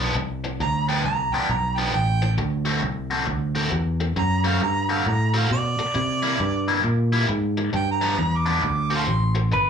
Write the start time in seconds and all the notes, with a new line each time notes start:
Already playing: B1
0.00 G2 F3 B3 D4
0.15 C2, muted overdriven electric guitar stroke
0.44 muted overdriven electric guitar stroke
0.60 D2 A#5, muted overdriven electric guitar stroke
0.89 G2 F3 B3 D4 G5
1.04 C2 A#5, muted overdriven electric guitar stroke
1.33 G2 F3 B3 D4 G5, muted fingered electric bass stroke
1.49 B1 A#5, muted overdriven electric guitar stroke
1.77 G2 F3 B3 D4 G5
1.93 A1 G5, muted overdriven electric guitar stroke
2.22 muted overdriven electric guitar stroke
2.38 D2, muted overdriven electric guitar stroke
2.65 D3 A3 C4 F#4
2.82 C2, muted overdriven electric guitar stroke
3.11 D3 A3 C4 F#4
3.26 D2, muted overdriven electric guitar stroke
3.55 D3 A3 C4 F#4
3.71 E2, muted overdriven electric guitar stroke
4.00 muted overdriven electric guitar stroke
4.16 F#2 A#5, muted overdriven electric guitar stroke
4.44 D3 A3 C4 F#4 F5
4.61 G2 A#5, muted overdriven electric guitar stroke
4.89 D3 A3 C4 F#4 F5
5.06 A2 A#5, muted overdriven electric guitar stroke
5.34 D3 A3 C4 F#4 F5
5.50 B2 D5, muted overdriven electric guitar stroke
5.79 muted overdriven electric guitar stroke, muted fingered electric bass stroke
5.94 C3, muted overdriven electric guitar stroke
6.23 C3 G3 A#3 E4
6.39 G2, muted overdriven electric guitar stroke
6.68 C3 G3 A#3 E4
6.84 A#2, muted overdriven electric guitar stroke
7.13 C3 G3 A#3 E4
7.28 G#2, muted overdriven electric guitar stroke
7.57 muted overdriven electric guitar stroke
7.73 G2 G5, muted overdriven electric guitar stroke
7.92 A#5
8.01 G2 F3 B3 D4
8.17 E2, muted overdriven electric guitar stroke
8.37 D6
8.46 G2 F3 B3 D4
8.62 D2, muted overdriven electric guitar stroke
8.90 D3 A3 C4 F#4
8.96 F5 A5 C6
9.07 A1, muted overdriven electric guitar stroke
9.35 muted overdriven electric guitar stroke
9.51 G1 B4, muted overdriven electric guitar stroke